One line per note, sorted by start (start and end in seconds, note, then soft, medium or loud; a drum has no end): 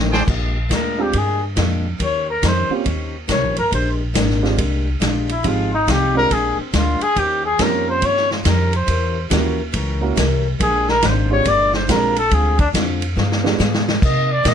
0.00 0.26 A1 medium
0.00 0.13 F2 medium
0.00 0.13 D#3 medium
0.00 0.14 D#3 medium
0.00 0.13 A3 medium
0.00 0.14 A3 medium
0.00 0.13 C4 medium
0.00 0.14 D4 medium
0.00 0.13 G4 medium
0.12 0.22 D4 medium
0.12 0.22 G#4 medium
0.12 0.22 C5 medium
0.12 0.22 G5 medium
0.12 snare medium
0.26 0.69 A#1 medium
0.26 0.56 A#2 soft
0.26 0.57 G#3 medium
0.26 0.57 D4 medium
0.26 0.58 G4 medium
0.26 kick medium
0.26 crash medium
0.69 1.12 D2 medium
0.69 0.99 A#2 medium
0.69 1.00 G#3 medium
0.69 1.00 D4 medium
0.69 1.00 G4 medium
0.69 kick soft
0.69 snare medium
0.69 hi-hat pedal medium
0.69 ride medium
0.74 1.03 A#4 medium
0.98 1.12 G#3 medium
0.98 1.12 C4 medium
0.98 1.12 D4 medium
0.98 1.12 F4 medium
0.98 1.12 G4 medium
0.98 1.19 G4 medium
1.13 1.56 G2 medium
1.13 1.42 A#2 soft
1.13 1.43 G#3 soft
1.13 1.44 D4 soft
1.13 1.44 G4 medium
1.13 kick soft
1.13 ride medium
1.18 1.43 G#4 medium
1.56 1.99 F2 medium
1.56 1.86 A#2 medium
1.56 1.86 G#3 medium
1.56 1.86 D4 medium
1.56 1.87 G4 medium
1.56 kick soft
1.56 snare medium
1.56 hi-hat pedal medium
1.56 ride medium
1.99 2.42 D#2 medium
1.99 2.29 D#3 soft
1.99 2.29 C#4 soft
1.99 2.30 G4 soft
1.99 2.30 C5 medium
1.99 kick soft
1.99 ride medium
2.04 2.28 C#5 medium
2.30 2.48 A#4 medium
2.42 2.69 F2 medium
2.42 2.72 D#3 medium
2.42 2.72 C#4 medium
2.42 2.72 G4 medium
2.42 2.73 C5 medium
2.42 kick soft
2.42 snare medium
2.42 hi-hat pedal medium
2.42 ride medium
2.47 2.73 C5 medium
2.70 2.84 A#3 medium
2.70 2.84 C4 medium
2.70 2.84 C#4 medium
2.70 2.84 F4 medium
2.70 2.84 G4 medium
2.70 muted upright bass stroke soft
2.84 3.28 D#2 medium
2.84 3.14 D#3 medium
2.84 3.15 C#4 medium
2.84 3.16 G4 medium
2.84 3.16 C5 medium
2.84 kick soft
2.84 ride medium
3.28 3.44 C2 medium
3.28 3.58 D#3 medium
3.28 3.58 C#4 medium
3.28 3.58 G4 medium
3.28 3.59 C5 medium
3.28 3.56 C#5 medium
3.28 kick soft
3.28 snare medium
3.28 hi-hat pedal soft
3.28 ride medium
3.44 3.58 A#1 medium
3.56 3.71 G1 medium
3.56 3.72 A#4 medium
3.56 ride soft
3.70 4.14 A#1 medium
3.70 4.00 A#2 soft
3.70 4.01 G#3 soft
3.70 4.02 D4 medium
3.70 4.02 G4 medium
3.70 3.90 C5 medium
3.70 kick soft
3.70 ride medium
4.14 4.57 G#1 medium
4.14 4.44 A#2 medium
4.14 4.44 G#3 medium
4.14 4.44 D4 medium
4.14 4.45 G4 medium
4.14 kick soft
4.14 snare medium
4.14 hi-hat pedal medium
4.14 ride medium
4.30 snare soft
4.42 4.56 G#3 medium
4.42 4.57 C4 medium
4.42 4.56 D4 medium
4.42 4.56 F4 medium
4.42 4.57 G4 medium
4.42 snare soft
4.56 5.00 C2 medium
4.56 4.86 A#2 medium
4.56 4.87 G#3 medium
4.56 4.88 D4 medium
4.56 4.88 G4 medium
4.56 kick soft
4.56 ride medium
5.00 5.43 A#1 medium
5.00 5.30 A#2 medium
5.00 5.30 G#3 medium
5.00 5.31 D4 medium
5.00 5.31 G4 medium
5.00 kick soft
5.00 snare medium
5.00 hi-hat pedal medium
5.00 ride medium
5.29 5.49 E4 medium
5.29 ride soft
5.43 5.86 G#1 medium
5.43 5.73 F3 soft
5.43 5.69 G#3 medium
5.43 5.69 C4 medium
5.43 5.73 C4 soft
5.43 5.69 D#4 medium
5.43 5.74 D#4 medium
5.43 5.69 F4 medium
5.43 5.69 G4 medium
5.43 5.75 G#4 medium
5.43 kick soft
5.43 ride medium
5.48 5.74 F4 medium
5.75 5.92 D#4 medium
5.87 6.29 C2 medium
5.87 6.16 F3 medium
5.87 6.17 C4 medium
5.87 6.17 D#4 medium
5.87 6.17 G#4 medium
5.87 kick soft
5.87 snare medium
5.87 hi-hat pedal medium
5.87 ride medium
5.91 6.17 G4 medium
6.15 6.29 G#3 medium
6.15 6.29 C4 medium
6.15 6.29 D4 medium
6.15 6.29 F4 medium
6.15 6.29 G4 medium
6.15 6.34 A#4 loud
6.30 6.56 A#1 medium
6.30 6.59 A#2 soft
6.30 6.60 G#3 soft
6.30 6.60 D4 medium
6.30 6.61 G4 medium
6.30 6.59 G#4 medium
6.30 kick soft
6.30 ride medium
6.58 6.76 C4 soft
6.58 muted upright bass stroke soft
6.73 6.99 D2 medium
6.73 7.02 A#2 medium
6.73 7.03 G#3 medium
6.73 7.03 D4 medium
6.73 7.04 F4 medium
6.73 7.03 G4 medium
6.73 kick soft
6.73 snare medium
6.73 hi-hat pedal medium
6.73 ride medium
7.01 7.20 G#4 loud
7.01 ride soft
7.15 7.58 D#2 medium
7.15 7.45 D#3 soft
7.15 7.46 C#4 medium
7.15 7.46 G4 soft
7.15 7.45 G4 medium
7.15 7.47 C5 medium
7.15 kick soft
7.15 ride medium
7.46 7.64 G#4 medium
7.58 8.01 F2 medium
7.58 7.88 D#3 medium
7.58 8.24 A#3 medium
7.58 8.24 C4 medium
7.58 7.89 C#4 medium
7.58 8.25 C#4 medium
7.58 8.25 F4 medium
7.58 8.25 G4 medium
7.58 7.89 G4 medium
7.58 7.89 C5 medium
7.58 kick soft
7.58 snare medium
7.58 hi-hat pedal medium
7.58 ride medium
7.62 7.88 A#4 medium
7.89 8.07 C5 medium
8.00 8.44 G2 medium
8.00 8.30 D#3 soft
8.00 8.31 C#4 medium
8.00 8.32 G4 soft
8.00 8.32 C5 medium
8.00 kick soft
8.00 ride medium
8.05 8.31 C#5 loud
8.17 snare soft
8.31 8.49 F4 medium
8.31 snare soft
8.44 8.87 F2 medium
8.44 8.74 D#3 medium
8.44 8.74 C#4 medium
8.44 8.75 G4 medium
8.44 8.75 C5 medium
8.44 kick soft
8.44 snare medium
8.44 hi-hat pedal medium
8.44 ride medium
8.49 8.75 A#4 medium
8.73 9.29 C5 medium
8.73 ride soft
8.86 9.29 E2 medium
8.86 9.16 E3 soft
8.86 9.17 C#4 soft
8.86 9.18 G4 medium
8.86 9.18 A#4 medium
8.86 kick soft
8.86 ride medium
9.30 9.73 D#2 medium
9.30 9.60 E3 medium
9.30 9.55 A#3 medium
9.30 9.55 C#4 medium
9.30 9.60 C#4 medium
9.30 9.56 E4 medium
9.30 9.56 F#4 medium
9.30 9.56 G4 medium
9.30 9.60 G4 medium
9.30 9.61 A#4 medium
9.30 kick soft
9.30 snare medium
9.30 hi-hat pedal medium
9.30 ride medium
9.72 10.15 C#2 medium
9.72 10.02 E3 medium
9.72 10.03 C#4 medium
9.72 10.03 G4 medium
9.72 10.04 A#4 medium
9.72 kick soft
9.72 ride medium
10.01 10.15 A#3 medium
10.01 10.15 C#4 medium
10.01 10.15 E4 medium
10.01 10.15 F#4 medium
10.01 10.15 A#4 medium
10.16 10.59 C2 medium
10.16 10.45 E3 medium
10.16 10.46 C#4 medium
10.16 10.46 G4 medium
10.16 10.46 A#4 medium
10.16 kick soft
10.16 snare medium
10.16 hi-hat pedal medium
10.16 ride medium
10.59 11.01 A#1 medium
10.59 10.88 A#2 soft
10.59 10.89 G#3 medium
10.59 10.90 D4 soft
10.59 10.90 G4 medium
10.59 10.91 G#4 medium
10.59 kick soft
10.59 ride medium
10.88 11.08 A#4 medium
10.88 snare soft
11.02 11.44 G#1 loud
11.02 11.31 A#2 medium
11.02 11.32 G#3 medium
11.02 11.32 D4 medium
11.02 11.33 G4 medium
11.02 kick soft
11.02 snare medium
11.02 hi-hat pedal medium
11.02 ride medium
11.06 11.32 C5 medium
11.30 11.44 G#3 medium
11.30 11.44 C4 medium
11.30 11.44 D4 medium
11.30 11.44 F4 medium
11.30 11.44 G4 medium
11.30 11.50 C#5 loud
11.44 11.87 G1 medium
11.44 11.74 A#2 soft
11.44 11.74 G#3 medium
11.44 11.75 D4 medium
11.44 11.75 G4 soft
11.44 kick soft
11.44 ride medium
11.48 11.74 D5 loud
11.73 11.92 C5 medium
11.73 snare medium
11.88 12.30 A#1 medium
11.88 12.17 A#2 medium
11.88 12.13 G#3 medium
11.88 12.17 G#3 medium
11.88 12.13 C4 medium
11.88 12.13 D4 medium
11.88 12.18 D4 medium
11.88 12.13 F4 medium
11.88 12.13 G4 medium
11.88 12.18 G4 medium
11.88 12.17 A#4 medium
11.88 kick soft
11.88 snare medium
11.88 hi-hat pedal medium
11.88 ride medium
12.16 12.36 A4 medium
12.16 ride soft
12.30 12.73 D2 medium
12.30 12.59 D3 soft
12.30 12.60 G#3 medium
12.30 12.61 C4 medium
12.30 12.61 F4 medium
12.30 kick soft
12.30 ride medium
12.34 12.59 G#4 medium
12.59 12.68 D4 medium
12.59 kick medium
12.59 ride soft
12.73 13.15 F2 medium
12.73 13.03 D3 medium
12.73 13.03 G#3 medium
12.73 13.03 C4 medium
12.73 13.04 F4 medium
12.73 kick soft
12.73 snare medium
12.73 hi-hat pedal medium
12.73 ride medium
13.02 ride soft
13.15 13.58 G2 medium
13.15 13.45 G3 medium
13.15 13.46 B3 medium
13.15 13.46 F4 medium
13.15 13.47 G#4 medium
13.15 snare soft
13.32 snare medium
13.44 13.57 G#3 medium
13.44 13.57 B3 medium
13.44 13.58 D4 medium
13.44 13.58 F4 medium
13.44 13.58 G4 medium
13.44 snare medium
13.59 14.01 G#2 medium
13.59 13.88 G3 medium
13.59 13.88 B3 medium
13.59 13.89 F4 medium
13.59 13.89 G#4 medium
13.59 snare medium
13.59 hi-hat pedal medium
13.74 snare medium
13.89 snare medium
14.01 14.31 C3 soft
14.01 14.44 C3 medium
14.01 14.31 A#3 soft
14.01 14.32 D#4 medium
14.01 14.32 G4 medium
14.01 kick medium
14.01 crash medium
14.05 14.33 D#5 medium
14.32 14.49 D5 medium
14.43 14.54 A#2 medium
14.43 14.54 C3 medium
14.43 14.54 A#3 medium
14.43 14.54 D#4 medium
14.43 14.54 G4 medium
14.43 kick soft
14.43 snare medium
14.43 hi-hat pedal medium
14.43 ride medium
14.48 14.54 D#5 medium